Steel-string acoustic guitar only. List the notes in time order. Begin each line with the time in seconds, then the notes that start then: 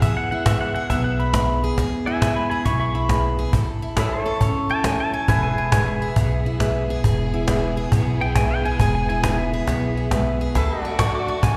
Already playing: B3 E4
0.02 E3 G#4
0.32 E4
0.47 G#3
0.76 G#4
0.91 B2 B3
1.20 E4
1.35 G#3
1.64 G#4
1.79 E3 G#4
2.07 E4
2.23 G#3
2.51 G#4
2.66 B2 B3
2.95 E4
3.10 G#3
3.39 G#4
3.54 A2 A4
3.82 E4
3.97 A3
4.26 A4
4.41 E3 C#4
4.69 E4
4.85 A3
5.14 A4
5.29 E3 G#4
5.58 E4
5.73 G#3
6.02 G#4
6.17 B2 B3
6.46 E4
6.61 G#3
6.90 G#4
7.05 E3 G#4
7.34 E4
7.48 G#3
7.77 G#4
7.93 B2 B3
8.21 E4
8.36 G#3
8.65 G#4
8.81 E3 G#4
9.10 E4
9.25 G#3
9.53 G#4
9.68 B2 B3
9.97 E4
10.12 G#3
10.41 G#4
10.56 D3 A4
10.85 F#4
11.00 F#3
11.28 A4
11.43 A2 D4